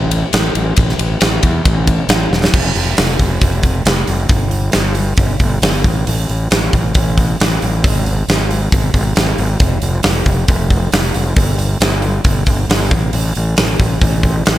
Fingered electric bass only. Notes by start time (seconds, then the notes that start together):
Already playing: A1
0.33 A1
0.55 A1
0.78 A1
0.99 A1
1.21 A1
1.43 E2
1.66 A1
2.09 A1
2.31 E1
2.54 F1
2.75 F1
2.98 F1
3.20 F1
3.42 F1
3.86 F1
4.08 F1
4.29 G1
4.74 G1
5.18 G1
5.40 G1
5.62 G1
5.85 A1
6.08 A1
6.29 A1
6.51 A1
6.73 A1
6.96 A1
7.41 A1
7.62 A1
7.84 G#1
8.28 G#1
8.73 G#1
8.94 G#1
9.17 G#1
9.38 G#1
9.61 F1
9.82 F1
10.04 F1
10.26 F1
10.48 F1
10.93 F1
11.15 F1
11.37 G1
11.80 G1
12.25 G1
12.47 G1
12.69 G1
12.92 A1
13.13 A1
13.36 A1
13.59 A1
13.80 A1
14.02 A1
14.47 A1